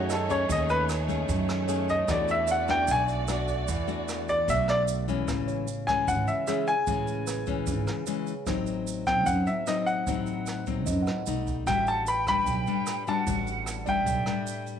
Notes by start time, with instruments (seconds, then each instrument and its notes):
Already playing: upright bass F#2, nylon-string guitar D#3 A3 C#4 G#4, violin section A3 D#4 G#4 C#5
0.09 grand piano A4, tine electric piano D#5, cross-stick, closed hi-hat, shaker
0.29 nylon-string guitar A3 C#4 G#4, grand piano C#5, kick, closed hi-hat, shaker
0.49 upright bass D#2, nylon-string guitar D#3 A3 C#4 G#4, grand piano D#5, kick, closed hi-hat, shaker
0.69 grand piano B4, closed hi-hat, shaker
0.89 cross-stick, closed hi-hat, shaker
1.08 nylon-string guitar A3 C#4 G#4, kick, closed hi-hat, shaker
1.28 upright bass F#2, nylon-string guitar D#3, kick, closed hi-hat, shaker
1.49 cross-stick, closed hi-hat, shaker
1.68 nylon-string guitar A3 C#4 G#4, tine electric piano C#5, closed hi-hat, shaker
1.89 grand piano D#5, kick, closed hi-hat, shaker
2.08 upright bass E2, nylon-string guitar E3 A3 D4 F#4, violin section F#4 D5, grand piano D5, kick, cross-stick, closed hi-hat, shaker
2.28 grand piano E5, closed hi-hat, shaker
2.47 tine electric piano E5, grand piano F#5, closed hi-hat, shaker
2.68 nylon-string guitar A3 D4 F#4, grand piano G5, kick, cross-stick, closed hi-hat, shaker
2.88 upright bass B1, nylon-string guitar B2, grand piano G#5, kick, closed hi-hat, shaker
3.08 closed hi-hat, shaker
3.28 nylon-string guitar A3 D4 F#4, cross-stick, closed hi-hat, shaker
3.48 kick, closed hi-hat, shaker
3.68 upright bass E2, nylon-string guitar E3, kick, closed hi-hat, shaker
3.87 nylon-string guitar A3 D4 F#4, closed hi-hat, shaker
4.08 cross-stick, closed hi-hat, shaker
4.28 grand piano D5, kick, closed hi-hat, shaker
4.48 upright bass B1, nylon-string guitar B2 A3 D4 F#4, grand piano E5, kick, closed hi-hat, shaker
4.68 grand piano D5, cross-stick, closed hi-hat, shaker
4.88 closed hi-hat, shaker
5.08 nylon-string guitar E3 G#3 C#4, kick, closed hi-hat, shaker
5.28 upright bass A1, nylon-string guitar C#3, kick, cross-stick, closed hi-hat, shaker
5.48 tine electric piano C#5, closed hi-hat, shaker
5.68 closed hi-hat, shaker
5.87 nylon-string guitar E3 G#3 C#4, grand piano G#5, kick, cross-stick, shaker
6.08 upright bass G#1, nylon-string guitar C#3, grand piano F#5, kick, closed hi-hat, shaker
6.28 grand piano E5, closed hi-hat, shaker
6.47 nylon-string guitar E3 G#3 C#4, tine electric piano G#4, grand piano E5, cross-stick, closed hi-hat, shaker
6.67 grand piano G#5, closed hi-hat, shaker
6.87 upright bass A1, nylon-string guitar C#3 E3 G#3 C#4, kick, closed hi-hat, shaker
7.07 closed hi-hat, shaker
7.27 tine electric piano B4, cross-stick, closed hi-hat, shaker
7.46 nylon-string guitar E3 G#3 C#4, kick, closed hi-hat, shaker
7.67 upright bass G#1, nylon-string guitar C#3, kick, closed hi-hat, shaker
7.87 cross-stick, closed hi-hat, shaker
8.07 nylon-string guitar E3 G#3 C#4, closed hi-hat, shaker
8.27 closed hi-hat, shaker
8.46 upright bass A1, nylon-string guitar A2 F#3 C4 D#4, tine electric piano C5, kick, cross-stick, closed hi-hat, shaker
8.66 closed hi-hat, shaker
8.86 closed hi-hat, shaker
9.07 nylon-string guitar F#3 C4 D#4, grand piano G5, kick, cross-stick, shaker
9.26 upright bass F#2, nylon-string guitar A2, grand piano F#5, kick, closed hi-hat, shaker
9.47 grand piano E5, closed hi-hat, shaker
9.67 nylon-string guitar F#3 C4 D#4, grand piano D#5, cross-stick, closed hi-hat, shaker
9.86 grand piano F#5, closed hi-hat, shaker
10.07 upright bass A1, nylon-string guitar A2 F#3 C4 D#4, kick, closed hi-hat, shaker
10.26 closed hi-hat, shaker
10.46 cross-stick, closed hi-hat, shaker
10.66 nylon-string guitar F#3 C4 D#4, kick, closed hi-hat, shaker
10.86 upright bass F#2, nylon-string guitar A2, tine electric piano D#5, kick, closed hi-hat, shaker
11.02 tine electric piano F#5, shaker
11.07 cross-stick, closed hi-hat
11.26 upright bass B1, nylon-string guitar G3 A3 D#4, closed hi-hat, shaker
11.47 kick, closed hi-hat, shaker
11.66 upright bass A1, nylon-string guitar A2 G3 D4 F#4, flute section E5, grand piano G5, kick, cross-stick, closed hi-hat, shaker
11.87 flute section F#5, grand piano A5, closed hi-hat, shaker
12.06 tine electric piano B4, flute section G5, grand piano B5, closed hi-hat, shaker
12.27 nylon-string guitar G3 D4, flute section G5, grand piano B5, kick, cross-stick, closed hi-hat, shaker
12.47 upright bass B1, nylon-string guitar A2, kick, closed hi-hat, shaker
12.67 nylon-string guitar G3 D4, closed hi-hat, shaker
12.86 cross-stick, closed hi-hat, shaker
13.07 nylon-string guitar G3 D4 F#4, flute section F#5, grand piano A5, closed hi-hat, shaker
13.27 upright bass A1, nylon-string guitar A2 G3 D4 F#4, kick, closed hi-hat, shaker
13.46 closed hi-hat, shaker
13.66 cross-stick, closed hi-hat, shaker
13.86 nylon-string guitar G3 D4, tine electric piano D5, flute section E5, grand piano G5, kick, closed hi-hat, shaker
14.06 upright bass B1, nylon-string guitar A2, kick, closed hi-hat, shaker
14.26 nylon-string guitar G3 D4, cross-stick, closed hi-hat, shaker
14.46 closed hi-hat, shaker
14.66 closed hi-hat, shaker